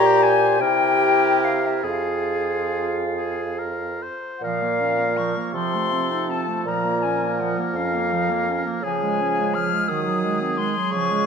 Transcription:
Already playing: A#2 G4 A#5
0.05 C5
0.22 G#5
0.60 C3 E4 G4 A#4 G5
1.44 F5
1.66 E5
1.84 F2 F4 G#4 F5
3.17 G#4
3.59 A#4
4.03 C5
4.38 A#2 F#5
4.42 F3 A#4 F5
4.62 A#3
4.81 C#4
5.00 A#3
5.17 F3 C#6
5.37 A#3
5.53 C3 F3 A4 C6
5.74 A3
5.93 C4
6.11 D#4
6.29 C4 A5
6.48 A3
6.65 A#2 F3 A#4 A#5
6.85 A#3
7.02 C#4 G#5
7.23 A#3
7.40 F3 F#5
7.59 A#3
7.74 F2 C#4 F5
7.95 A#3
8.13 F3
8.30 A#3
8.49 C#4
8.66 A#3
8.82 C#3 F3 G#4 G#5
9.03 G#3
9.21 C#4
9.39 G#3
9.54 F3 F6
9.73 G#3
9.88 D#3 F#3 D#6
10.07 F#3
10.24 G#3
10.42 C4
10.57 G#3 C6
10.76 F#3
10.91 C#3 F3 C#6
11.10 G#3

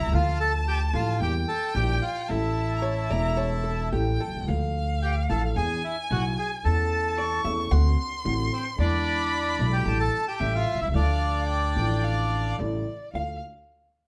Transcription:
Already playing: E4 E5 A#5
0.06 C#2
0.10 D2 D3 F3 A3 F4 A5
0.15 F5
0.41 A4 A5
0.68 G4 G5
0.93 A1 A2 D3 F3 A3 F4 F5
1.20 E2 E3 G3 A#3 G4 G5
1.48 A4 A5
1.74 A#1 A#2 E3 G3 A#3 G4 G5
2.02 F4 F5
2.27 A1 A2 E3 A3 C#4 E4 A4 E5 A5
2.77 A#5
2.82 C#5 A5
3.08 E1 E2 E3 A3 C#4 D5 A#5
3.12 A4
3.37 C#5 A5
3.64 A4
3.92 A1 A2 E3 A3 C#4 G4 A4 G5
4.20 A4
4.27 B1
4.35 C2
4.41 C#2
4.46 D2 D3 F3 A3 D4 A4 F5
5.02 G4 G5
5.29 A1 A2 F3 A3 D4 A4 A5
5.56 E2 E3 B3 D4 G#4 G#5
5.84 E4 E5
6.11 B1 B2 E3 B3 D4 F#4 G#4 F#5
6.38 G#4 G#5
6.64 E2 E3 A3 C#4 A4 A5
7.17 D5 C#6
7.44 E2 E3 A3 C#4 A4 E5
7.71 D2 D3 A3 C4 F#4 F#5 C6
8.24 A1 A2 D3 A3 C4 F#4
8.53 C4 C5
8.76 E2 D3 E3 G#3 B3 D4 E4 D5 B5
9.59 B1 B2 D3 G#3 B3 E4
9.73 G4 G5
9.85 A1 A2 D3 G3 A3 E4 A5
10.00 A4 A5
10.28 G4 G5
10.40 A1 A2 C#3 G3 A3 E4 E5
10.55 F4 F5
10.74 B1
10.81 C2 E4 E5
10.88 C#2
10.92 D2 D3 F3 A3 D4 F4 D5 F5
11.48 G5
11.74 A1 A2 D3 F3 A3 F4
12.04 F5
12.59 A1 A2 C#3 G3 A3 E4 D5
13.14 D2 A3 D4 F4 F5

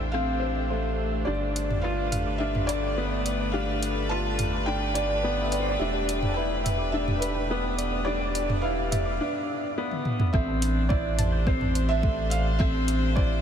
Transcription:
Already playing: A1 A3 D4 G4 C5 G5
0.00 E6
0.12 C4 A4 F5
0.40 C5
0.56 E5
0.70 A3 C5
0.98 E5
1.12 E5
1.25 G1 A3 D4 G4 D5
1.41 G4
1.56 closed hi-hat
1.70 mid tom
1.82 F4 B4 F5
1.99 B4
2.12 F5, closed hi-hat, mid tom
2.26 D6
2.38 D4 G4 E5
2.55 mid tom
2.67 B4 D5, closed hi-hat
2.83 G5
2.97 B3 B4
3.26 D5, closed hi-hat
3.40 D5
3.52 D4 G4 F5
3.68 G4
3.83 closed hi-hat
4.09 F4 B4 A5
4.38 F5, closed hi-hat, mid tom
4.53 D6
4.66 D4 G4 G5
4.94 B4 D5, closed hi-hat
5.10 G5
5.23 B3 B4
5.42 E5
5.52 D5, closed hi-hat
5.60 C5
5.66 D5
5.79 E1 D4 G4 E5
5.94 G4
6.09 closed hi-hat
6.22 mid tom
6.29 A5
6.34 E4 B4 G5
6.64 E5, closed hi-hat, mid tom
6.79 D6
6.92 D4 G4 E5
7.08 mid tom
7.20 B4, closed hi-hat
7.35 G5
7.49 B3 B4
7.78 D5, closed hi-hat
7.92 D5
8.05 D4 G4 D5
8.20 G4
8.35 closed hi-hat
8.50 mid tom
8.62 E4 B4 F5
8.91 E5, closed hi-hat, mid tom
9.05 D6
9.21 D4
9.78 B3
9.91 high tom
10.05 mid tom
10.20 mid tom
10.33 A1 C4 A4 E5, kick
10.48 A4
10.59 D4, closed hi-hat
10.89 E4 C5 D5, kick
11.15 C5 A5, closed hi-hat, mid tom
11.22 G4
11.32 G6
11.47 C4 A4 C5, kick
11.61 mid tom
11.75 C5, closed hi-hat
11.89 E5 C6
12.03 A3 C5, kick
12.30 E5 F5, closed hi-hat
12.46 E5
12.59 C4 A4 E5, kick
12.74 A4
12.88 closed hi-hat
13.16 E4 C5 D5, kick

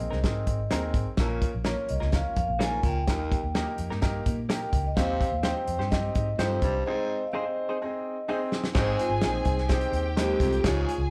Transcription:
Already playing: C4 D#4 G#4 A#4 D#5
0.11 C2 G#3 C4 D#4 A#4, snare
0.24 G#2 C4 D#4 G#4 A#4, kick, snare, closed hi-hat
0.47 G#1, kick, closed hi-hat
0.71 D#2 G#3 C4 D#4 G#4 A#4, snare, closed hi-hat
0.94 G#1, kick, closed hi-hat
1.17 A#1 A#2 A#3 C#4 F4 A4, kick, snare, closed hi-hat
1.25 A#4
1.42 kick, closed hi-hat
1.55 A#1
1.64 A#3 C#4 F4 A#4 C#5, snare, closed hi-hat
1.89 C2 D#5, closed hi-hat
2.00 C#2 A#3 C#4 F4 A#4, snare
2.12 A#3 C#4 F4 A#4 F5, kick, snare, closed hi-hat
2.36 F2 F5, kick, closed hi-hat
2.48 A#1
2.59 G#2 A#3 C#4 F4 A#4, snare, closed hi-hat
2.63 G#5
2.83 C#2 A#2, kick, closed hi-hat
2.87 G5
3.07 D#2 A#3 D#4 G4 A#4, kick, snare, closed hi-hat
3.32 kick, closed hi-hat
3.44 D#2
3.55 A#3 D#4 G4 A#4, snare, closed hi-hat
3.78 F2, closed hi-hat
3.90 G2 A#3 D#4 G4 A#4, snare
4.01 A#3 D#4 G4 A#4, kick, snare, closed hi-hat
4.26 A#2, kick, closed hi-hat
4.49 A#3 D#4 G4 A#4 G5, snare, closed hi-hat
4.73 C#2, kick, closed hi-hat
4.87 D#5
4.96 D#2 C3 C4 C#4 G4 C5 F5, kick, snare, closed hi-hat
5.02 D#4
5.21 kick, closed hi-hat
5.32 D#2
5.43 C4 D#4 G4 C5 G5, snare, closed hi-hat
5.67 F2, closed hi-hat
5.78 G2 C4 D#4 G4 C5, snare
5.91 C4 D#4 G4 D#5, kick, snare, closed hi-hat
6.15 G#2, kick, closed hi-hat
6.38 F2 G2 C4 D#4 G4 C5, snare, closed hi-hat
6.62 C2 G2, kick, closed hi-hat
6.85 G#2 C4 D#4 G#4 C5 D#5
7.11 D#5
7.27 F5
7.32 C4 D#4 G#4 C5 D#5
7.69 C4 D#4 G#4 C5
7.82 C4 D#4 G#4 D#5
8.28 C4 D#4 G#4 C5 D#5
8.52 snare
8.64 snare
8.74 G#1 G#2 C4 D#4 G#4 C5 G#5, kick, snare, crash
8.99 F4, closed hi-hat
9.10 G#1
9.21 A#1 C4 D#4 G#4 A#4, snare, closed hi-hat
9.29 C5
9.45 C2, kick, closed hi-hat
9.58 snare
9.69 C4 D#4 G4 G#4 C5 G5, kick, snare, closed hi-hat
9.81 closed hi-hat
9.93 D#2, closed hi-hat
10.16 D#2 G#3 C4 D#4 G4 C5, snare, closed hi-hat
10.40 C2 F2, kick, closed hi-hat
10.52 closed hi-hat
10.63 C#2 G#2 C#4 F4 G#4 C#5 G#5, kick, snare, closed hi-hat
10.89 closed hi-hat
10.98 C#2

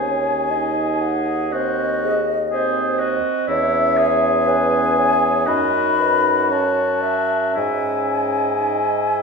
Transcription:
Already playing: D#2 G#4 G#5
0.00 C#4 C#5
0.51 D#4 D#5
1.01 F#5
1.53 C4 F#4 C5 D#5
2.03 G#4
2.51 C4 G#4 C5
2.99 F#4 D#5
3.47 E2 C#4 E4 C#5 E5
3.98 G#4
4.47 B4 G#5
4.98 C#5
5.47 F#2 D#4 F#4 D#5 B5
5.99 B4
6.50 C#4 F#4 C#5 A5
7.02 E5
7.55 G#2 C#4 E4 D#5 G#5
8.63 D#4

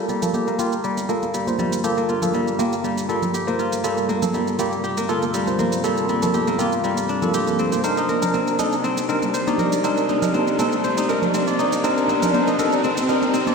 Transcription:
Already playing: G3 A#3 C4 D4 D#4 F4 G4 A4, riser
0.09 G3, high conga, shaker
0.22 A#3 F4 A4, muted conga, low conga, shaker
0.34 G4, high conga, shaker
0.47 A#3, shaker
0.59 A#3 F4 G4, muted conga, high conga, shaker
0.72 shaker
0.84 G3, shaker
0.97 muted conga, shaker
1.09 A#3 F4 A4, shaker
1.23 high conga, shaker
1.34 G3, muted conga, shaker
1.47 A#3 F4 C5, high conga, shaker
1.59 G3, high conga, low conga, shaker
1.73 muted conga, shaker
1.84 A#3 F4 G4 A4, shaker
1.97 A#3, shaker
2.09 F4, high conga, shaker
2.22 A#3 F4 A4, muted conga, low conga, shaker
2.34 G3, high conga, shaker
2.48 shaker
2.59 A#3 F4 G4, high conga, shaker
2.73 shaker
2.84 G3, high conga, shaker
2.97 muted conga, shaker
3.09 G3 A#3 F4 A4, shaker
3.22 low conga, shaker
3.33 G4, muted conga, shaker
3.47 A#3 F4 C5, shaker
3.59 F4, shaker
3.72 muted conga, shaker
3.84 G3 A#3 C4 F4 A4, shaker
3.98 shaker
4.09 A#3, high conga, shaker
4.22 A#3 F4 A4, muted conga, low conga, shaker
4.33 G3, high conga, shaker
4.47 shaker
4.59 G3 A#3 F4 G4, muted conga, high conga, shaker
4.72 shaker
4.84 G4, shaker
4.97 A#3, muted conga, shaker
5.09 A#3 F4 A4, shaker
5.22 high conga, shaker
5.34 G3, muted conga, shaker
5.46 A#3 F4 C5, high conga, shaker
5.59 A#3, high conga, low conga, shaker
5.72 muted conga, shaker
5.84 G3 A#3 F4 A4, shaker
5.97 shaker
6.08 G3, high conga, shaker
6.22 A#3 F4 A4, muted conga, low conga, shaker
6.34 G4, high conga, shaker
6.47 A#3, shaker
6.59 A#3 F4 G4, high conga, shaker
6.72 shaker
6.83 G3, high conga, shaker
6.97 muted conga, shaker
7.09 D4, shaker
7.22 A#3 F4 A4, low conga, shaker
7.34 G4, muted conga, shaker
7.47 shaker
7.59 C4, shaker
7.72 A#3 F4 C5, muted conga, shaker
7.84 D4 D#4 G4 A#4 C5 D5, mid tom, shaker
7.97 D#4, shaker
8.09 A#4, high conga, shaker
8.22 D4 D#4 A#4, muted conga, low conga, shaker
8.34 C4, high conga, shaker
8.47 shaker
8.59 D4 D#4 A4, muted conga, high conga, shaker
8.72 shaker
8.84 C4, mid tom, shaker
8.97 muted conga, shaker
9.09 C4 D4 D#4 A#4, shaker
9.22 high conga, shaker
9.34 C5, muted conga, shaker
9.47 D4 D#4 D5, high conga, shaker
9.58 A#4, mid tom, high conga, low conga, shaker
9.72 muted conga, shaker
9.84 C4 D4 D#4 A#4, mid tom, shaker
9.97 shaker
10.09 D#4, high conga, shaker
10.22 D4 D#4 A#4, muted conga, low conga, shaker
10.34 C4, high conga, shaker
10.47 shaker
10.59 C4 D4 D#4 A4, high conga, shaker
10.72 shaker
10.84 C5, mid tom, high conga, shaker
10.97 D#4, muted conga, shaker
11.09 D4 D#4 A#4, mid tom, shaker
11.22 low conga, shaker
11.34 C4, muted conga, shaker
11.47 D4 D#4 D5, shaker
11.59 D#4, shaker
11.72 muted conga, shaker
11.84 C4 D4 D#4 A#4, mid tom, shaker
11.97 shaker
12.08 C4, high conga, shaker
12.22 D4 D#4 A#4, muted conga, low conga, shaker
12.34 C5, mid tom, high conga, shaker
12.47 D#4, shaker
12.59 D4 D#4 A4 A#4, mid tom, muted conga, high conga, shaker
12.72 shaker
12.84 C4, mid tom, shaker
12.97 muted conga, shaker
13.09 D4 D#4 A#4, mid tom, shaker
13.22 high conga, shaker
13.33 C4, mid tom, muted conga, shaker
13.47 D4 D#4 D5, high conga, shaker

